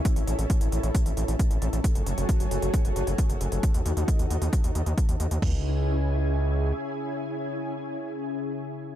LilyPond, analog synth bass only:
\new Staff \with { instrumentName = "Analog synth bass" } { \clef bass \time 4/4 \key cis \minor \tempo 4 = 134 r16 a,,16 a,,16 a,,16 r16 a,,16 a,,16 a,,16 r16 a,,16 a,,16 a,,16 r16 a,,16 a,,16 a,,16 | r16 fis,,16 fis,,16 fis,,16 r16 fis,,16 fis,,16 fis,,16 r16 fis,,16 fis,,16 fis,,16 r16 fis,,16 fis,,16 fis,,16 | r16 dis,16 dis,16 dis,16 r16 dis,16 dis,16 dis,16 r16 dis,16 dis,16 dis,16 r16 dis,16 dis,16 dis,16 | cis,2. r4 |
r1 | }